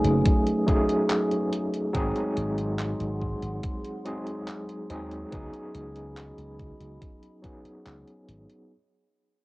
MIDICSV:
0, 0, Header, 1, 6, 480
1, 0, Start_track
1, 0, Tempo, 845070
1, 1105, Time_signature, 4, 2, 24, 8
1, 5366, End_track
2, 0, Start_track
2, 0, Title_t, "Ambient pad"
2, 0, Program_c, 0, 92
2, 0, Note_on_c, 0, 57, 77
2, 0, Note_on_c, 0, 80, 69
2, 0, Note_on_c, 0, 87, 84
2, 1083, Note_off_c, 0, 57, 0
2, 1083, Note_off_c, 0, 80, 0
2, 1083, Note_off_c, 0, 87, 0
2, 1107, Note_on_c, 0, 84, 81
2, 1108, Note_on_c, 0, 78, 70
2, 1109, Note_on_c, 0, 68, 73
2, 3007, Note_off_c, 0, 78, 0
2, 3007, Note_off_c, 0, 84, 0
2, 3008, Note_off_c, 0, 68, 0
2, 3024, Note_on_c, 0, 66, 75
2, 3024, Note_on_c, 0, 83, 82
2, 3027, Note_on_c, 0, 75, 68
2, 4925, Note_off_c, 0, 66, 0
2, 4925, Note_off_c, 0, 83, 0
2, 4927, Note_off_c, 0, 75, 0
2, 5366, End_track
3, 0, Start_track
3, 0, Title_t, "Tine electric piano"
3, 0, Program_c, 1, 4
3, 0, Control_c, 1, 64, 127
3, 0, Note_on_c, 1, 54, 77
3, 0, Note_on_c, 1, 57, 69
3, 0, Note_on_c, 1, 61, 72
3, 0, Note_on_c, 1, 63, 70
3, 0, Note_on_c, 1, 68, 82
3, 352, Note_off_c, 1, 54, 0
3, 354, Note_off_c, 1, 57, 0
3, 356, Note_off_c, 1, 61, 0
3, 358, Note_off_c, 1, 63, 0
3, 360, Note_off_c, 1, 68, 0
3, 377, Note_on_c, 1, 54, 72
3, 382, Note_on_c, 1, 57, 66
3, 386, Note_on_c, 1, 61, 68
3, 390, Note_on_c, 1, 63, 65
3, 394, Note_on_c, 1, 68, 83
3, 1072, Note_off_c, 1, 54, 0
3, 1075, Note_off_c, 1, 57, 0
3, 1077, Note_off_c, 1, 61, 0
3, 1078, Note_off_c, 1, 63, 0
3, 1081, Note_off_c, 1, 68, 0
3, 1096, Note_on_c, 1, 54, 97
3, 1100, Note_on_c, 1, 56, 91
3, 1103, Note_on_c, 1, 60, 91
3, 1107, Note_on_c, 1, 63, 88
3, 1113, Control_c, 1, 64, 0
3, 1113, Note_on_c, 1, 68, 109
3, 1196, Control_c, 1, 64, 127
3, 2271, Note_off_c, 1, 54, 0
3, 2274, Note_off_c, 1, 56, 0
3, 2275, Note_off_c, 1, 60, 0
3, 2277, Note_off_c, 1, 63, 0
3, 2280, Note_off_c, 1, 68, 0
3, 2301, Note_on_c, 1, 54, 78
3, 2303, Note_on_c, 1, 56, 70
3, 2305, Note_on_c, 1, 60, 69
3, 2308, Note_on_c, 1, 63, 70
3, 2309, Note_on_c, 1, 68, 86
3, 2477, Note_off_c, 1, 54, 0
3, 2478, Note_off_c, 1, 56, 0
3, 2479, Note_off_c, 1, 60, 0
3, 2480, Note_off_c, 1, 63, 0
3, 2481, Note_off_c, 1, 68, 0
3, 2783, Note_on_c, 1, 54, 82
3, 2784, Note_on_c, 1, 56, 72
3, 2788, Note_on_c, 1, 60, 76
3, 2791, Note_on_c, 1, 63, 73
3, 2793, Note_on_c, 1, 68, 88
3, 2995, Note_off_c, 1, 54, 0
3, 2996, Note_off_c, 1, 56, 0
3, 2998, Note_off_c, 1, 60, 0
3, 2999, Note_off_c, 1, 63, 0
3, 3000, Note_off_c, 1, 68, 0
3, 3019, Note_on_c, 1, 54, 75
3, 3024, Note_on_c, 1, 59, 71
3, 3029, Note_on_c, 1, 61, 69
3, 3032, Control_c, 1, 64, 0
3, 3032, Note_on_c, 1, 63, 67
3, 3036, Note_on_c, 1, 68, 83
3, 3125, Control_c, 1, 64, 127
3, 4193, Note_off_c, 1, 54, 0
3, 4196, Note_off_c, 1, 59, 0
3, 4198, Note_off_c, 1, 61, 0
3, 4200, Note_off_c, 1, 63, 0
3, 4202, Note_off_c, 1, 68, 0
3, 4217, Note_on_c, 1, 54, 74
3, 4221, Note_on_c, 1, 59, 64
3, 4227, Note_on_c, 1, 61, 63
3, 4231, Note_on_c, 1, 63, 65
3, 4234, Note_on_c, 1, 68, 75
3, 4912, Note_off_c, 1, 54, 0
3, 4914, Note_off_c, 1, 59, 0
3, 4917, Note_off_c, 1, 61, 0
3, 4919, Note_off_c, 1, 63, 0
3, 4921, Note_off_c, 1, 68, 0
3, 4953, Control_c, 1, 64, 0
3, 5366, End_track
4, 0, Start_track
4, 0, Title_t, "Slap bass"
4, 0, Program_c, 2, 36
4, 25, Note_on_c, 2, 30, 97
4, 118, Note_off_c, 2, 30, 0
4, 1106, Note_on_c, 2, 32, 88
4, 1199, Note_off_c, 2, 32, 0
4, 1347, Note_on_c, 2, 32, 89
4, 1664, Note_off_c, 2, 32, 0
4, 1706, Note_on_c, 2, 32, 97
4, 1892, Note_off_c, 2, 32, 0
4, 1946, Note_on_c, 2, 32, 93
4, 2039, Note_off_c, 2, 32, 0
4, 2784, Note_on_c, 2, 39, 85
4, 2971, Note_off_c, 2, 39, 0
4, 3026, Note_on_c, 2, 37, 89
4, 3119, Note_off_c, 2, 37, 0
4, 3264, Note_on_c, 2, 37, 85
4, 3582, Note_off_c, 2, 37, 0
4, 3624, Note_on_c, 2, 37, 96
4, 3811, Note_off_c, 2, 37, 0
4, 3864, Note_on_c, 2, 37, 92
4, 3958, Note_off_c, 2, 37, 0
4, 4465, Note_on_c, 2, 37, 79
4, 4558, Note_off_c, 2, 37, 0
4, 4704, Note_on_c, 2, 32, 85
4, 4798, Note_off_c, 2, 32, 0
4, 5366, End_track
5, 0, Start_track
5, 0, Title_t, "Muted slap bass strokes"
5, 4344, Note_on_c, 9, 29, 41
5, 4400, Note_off_c, 9, 29, 0
5, 5366, End_track
6, 0, Start_track
6, 0, Title_t, "Drums"
6, 25, Note_on_c, 9, 42, 36
6, 81, Note_off_c, 9, 42, 0
6, 144, Note_on_c, 9, 42, 87
6, 145, Note_on_c, 9, 36, 111
6, 201, Note_off_c, 9, 42, 0
6, 202, Note_off_c, 9, 36, 0
6, 265, Note_on_c, 9, 42, 36
6, 322, Note_off_c, 9, 42, 0
6, 386, Note_on_c, 9, 36, 95
6, 386, Note_on_c, 9, 42, 59
6, 442, Note_off_c, 9, 36, 0
6, 442, Note_off_c, 9, 42, 0
6, 506, Note_on_c, 9, 42, 38
6, 563, Note_off_c, 9, 42, 0
6, 624, Note_on_c, 9, 39, 107
6, 624, Note_on_c, 9, 42, 86
6, 681, Note_off_c, 9, 39, 0
6, 681, Note_off_c, 9, 42, 0
6, 746, Note_on_c, 9, 42, 35
6, 802, Note_off_c, 9, 42, 0
6, 867, Note_on_c, 9, 42, 59
6, 923, Note_off_c, 9, 42, 0
6, 986, Note_on_c, 9, 42, 34
6, 1043, Note_off_c, 9, 42, 0
6, 1105, Note_on_c, 9, 42, 86
6, 1106, Note_on_c, 9, 36, 107
6, 1162, Note_off_c, 9, 42, 0
6, 1163, Note_off_c, 9, 36, 0
6, 1225, Note_on_c, 9, 42, 36
6, 1282, Note_off_c, 9, 42, 0
6, 1345, Note_on_c, 9, 42, 63
6, 1402, Note_off_c, 9, 42, 0
6, 1465, Note_on_c, 9, 42, 37
6, 1522, Note_off_c, 9, 42, 0
6, 1585, Note_on_c, 9, 39, 103
6, 1585, Note_on_c, 9, 42, 86
6, 1642, Note_off_c, 9, 39, 0
6, 1642, Note_off_c, 9, 42, 0
6, 1705, Note_on_c, 9, 42, 35
6, 1762, Note_off_c, 9, 42, 0
6, 1827, Note_on_c, 9, 36, 55
6, 1883, Note_off_c, 9, 36, 0
6, 1945, Note_on_c, 9, 42, 37
6, 2002, Note_off_c, 9, 42, 0
6, 2064, Note_on_c, 9, 42, 83
6, 2067, Note_on_c, 9, 36, 106
6, 2121, Note_off_c, 9, 42, 0
6, 2124, Note_off_c, 9, 36, 0
6, 2184, Note_on_c, 9, 42, 36
6, 2241, Note_off_c, 9, 42, 0
6, 2304, Note_on_c, 9, 42, 60
6, 2361, Note_off_c, 9, 42, 0
6, 2424, Note_on_c, 9, 42, 38
6, 2481, Note_off_c, 9, 42, 0
6, 2543, Note_on_c, 9, 39, 105
6, 2543, Note_on_c, 9, 42, 83
6, 2600, Note_off_c, 9, 39, 0
6, 2600, Note_off_c, 9, 42, 0
6, 2664, Note_on_c, 9, 42, 37
6, 2721, Note_off_c, 9, 42, 0
6, 2783, Note_on_c, 9, 42, 60
6, 2840, Note_off_c, 9, 42, 0
6, 2904, Note_on_c, 9, 42, 34
6, 2961, Note_off_c, 9, 42, 0
6, 3023, Note_on_c, 9, 42, 86
6, 3027, Note_on_c, 9, 36, 113
6, 3080, Note_off_c, 9, 42, 0
6, 3083, Note_off_c, 9, 36, 0
6, 3143, Note_on_c, 9, 42, 38
6, 3200, Note_off_c, 9, 42, 0
6, 3264, Note_on_c, 9, 42, 63
6, 3320, Note_off_c, 9, 42, 0
6, 3383, Note_on_c, 9, 42, 38
6, 3440, Note_off_c, 9, 42, 0
6, 3505, Note_on_c, 9, 39, 105
6, 3505, Note_on_c, 9, 42, 89
6, 3561, Note_off_c, 9, 39, 0
6, 3561, Note_off_c, 9, 42, 0
6, 3625, Note_on_c, 9, 42, 37
6, 3681, Note_off_c, 9, 42, 0
6, 3745, Note_on_c, 9, 42, 34
6, 3746, Note_on_c, 9, 36, 58
6, 3802, Note_off_c, 9, 42, 0
6, 3803, Note_off_c, 9, 36, 0
6, 3865, Note_on_c, 9, 42, 38
6, 3922, Note_off_c, 9, 42, 0
6, 3986, Note_on_c, 9, 36, 104
6, 3986, Note_on_c, 9, 42, 90
6, 4042, Note_off_c, 9, 36, 0
6, 4042, Note_off_c, 9, 42, 0
6, 4105, Note_on_c, 9, 42, 38
6, 4162, Note_off_c, 9, 42, 0
6, 4225, Note_on_c, 9, 42, 65
6, 4226, Note_on_c, 9, 36, 92
6, 4282, Note_off_c, 9, 36, 0
6, 4282, Note_off_c, 9, 42, 0
6, 4346, Note_on_c, 9, 42, 39
6, 4402, Note_off_c, 9, 42, 0
6, 4466, Note_on_c, 9, 39, 110
6, 4466, Note_on_c, 9, 42, 88
6, 4523, Note_off_c, 9, 39, 0
6, 4523, Note_off_c, 9, 42, 0
6, 4586, Note_on_c, 9, 42, 36
6, 4643, Note_off_c, 9, 42, 0
6, 4706, Note_on_c, 9, 42, 60
6, 4763, Note_off_c, 9, 42, 0
6, 4826, Note_on_c, 9, 42, 37
6, 4882, Note_off_c, 9, 42, 0
6, 5366, End_track
0, 0, End_of_file